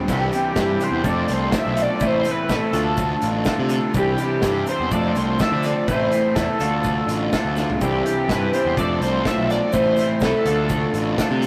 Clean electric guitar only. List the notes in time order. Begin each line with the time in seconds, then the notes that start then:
0.09 C3 E3 C4 D4 G4
0.33 C4 D4 G4
0.57 E3 C4 D4 G4
0.81 C4 D4 G4
1.03 F3 A3 D4 A4 C5
1.51 F3 A3 D4 A4 C5
1.74 D4 A4 C5
2.01 A2 E3 A3 C4 E4 B4
2.24 A3 C4 E4 B4
2.49 A3 C4 E4 B4
2.73 D3 A3 D4 F4 A4
3.47 D3 A3 D4 F4 A4
3.70 D4 F4 A4
3.94 C3 E3 C4 D4 G4
4.20 C4 D4 G4
4.44 E3 C4 D4 G4
4.69 C4 D4 G4
4.93 F3 A3 D4 A4 C5
5.41 F3 A3 D4 A4 C5
5.65 D4 A4 C5
5.90 A2 E3 A3 C4 E4 B4
6.12 A3 C4 E4 B4
6.35 A3 C4 E4 B4
6.60 D3 A3 D4 F4 A4
7.32 D3 A3 D4 F4 A4
7.57 D4 F4 A4
7.82 C3 E3 C4 D4 G4
8.06 C4 D4 G4
8.30 E3 C4 D4 G4
8.55 C4 D4 G4
8.79 F3 A3 D4 A4 C5
9.25 F3 A3 D4 A4 C5
9.50 D4 A4 C5
9.72 A2 E3 A3 C4 E4 B4
9.98 A3 C4 E4 B4
10.23 A3 C4 E4 B4
10.46 D3 A3 D4 F4 A4
11.19 D3 A3 D4 F4 A4
11.43 F4 A4